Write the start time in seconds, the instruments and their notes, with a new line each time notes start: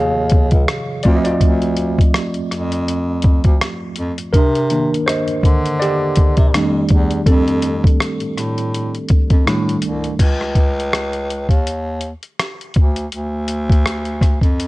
Already playing: bass clarinet D#2, tine electric piano C3 D#3 F3 F4 G#4 C#5 D#5 F5
0.30 kick, closed hi-hat
0.51 bass clarinet C#2, kick, closed hi-hat
0.68 cross-stick, closed hi-hat
1.03 bass clarinet D2, tine electric piano F3 A3 C4 F4 D5, kick, closed hi-hat
1.16 tine electric piano D#5
1.24 tine electric piano F4 D5, closed hi-hat
1.41 bass clarinet D2, kick, closed hi-hat
1.62 closed hi-hat
1.77 closed hi-hat
1.98 kick, closed hi-hat
2.14 cross-stick, closed hi-hat
2.34 bass clarinet F2, closed hi-hat
2.51 bass clarinet F2, cross-stick, closed hi-hat
2.72 closed hi-hat
2.88 closed hi-hat
3.22 kick, closed hi-hat
3.44 bass clarinet D2, kick, closed hi-hat
3.61 cross-stick, closed hi-hat
3.96 bass clarinet F2, closed hi-hat
4.18 closed hi-hat
4.33 bass clarinet C3, tine electric piano D4 A#4, kick, closed hi-hat
4.55 closed hi-hat
4.70 tine electric piano D#3 A#3 D4, closed hi-hat
4.94 closed hi-hat
5.06 tine electric piano C5 D#5, cross-stick, closed hi-hat
5.28 bass clarinet D3, closed hi-hat
5.43 bass clarinet D3, kick, closed hi-hat
5.66 closed hi-hat
5.79 tine electric piano G4 D5, closed hi-hat
6.16 kick, closed hi-hat
6.37 bass clarinet C3, kick, closed hi-hat
6.54 bass clarinet F2, tine electric piano D#3 G3 A3 D4, cross-stick, closed hi-hat
6.89 bass clarinet E2, kick, closed hi-hat
7.11 closed hi-hat
7.26 bass clarinet F2, tine electric piano C4 A4, kick, closed hi-hat
7.48 closed hi-hat
7.62 closed hi-hat
7.84 kick, closed hi-hat
8.00 cross-stick, closed hi-hat
8.20 bass clarinet A2, closed hi-hat
8.36 bass clarinet A2, cross-stick, closed hi-hat
8.58 closed hi-hat
8.74 closed hi-hat
8.95 closed hi-hat
9.08 kick, closed hi-hat
9.30 bass clarinet F2, kick, closed hi-hat
9.46 bass clarinet A2, tine electric piano D#3 G3 A3 D4, cross-stick, closed hi-hat
9.69 closed hi-hat
9.82 bass clarinet C2, closed hi-hat
10.04 closed hi-hat
10.19 bass clarinet C#2, kick, closed hi-hat, crash
10.41 cross-stick
10.55 kick, closed hi-hat
10.80 closed hi-hat
10.93 cross-stick, closed hi-hat
11.13 closed hi-hat
11.30 closed hi-hat
11.49 bass clarinet D#2, kick, closed hi-hat
11.67 closed hi-hat
12.01 closed hi-hat
12.23 closed hi-hat
12.39 cross-stick, closed hi-hat
12.61 closed hi-hat
12.74 bass clarinet D2, kick, closed hi-hat
12.96 closed hi-hat
13.12 bass clarinet D2, closed hi-hat
13.48 closed hi-hat
13.70 kick, closed hi-hat
13.86 cross-stick, closed hi-hat
14.05 closed hi-hat
14.21 kick, cross-stick, closed hi-hat
14.41 bass clarinet F2, kick, closed hi-hat
14.60 closed hi-hat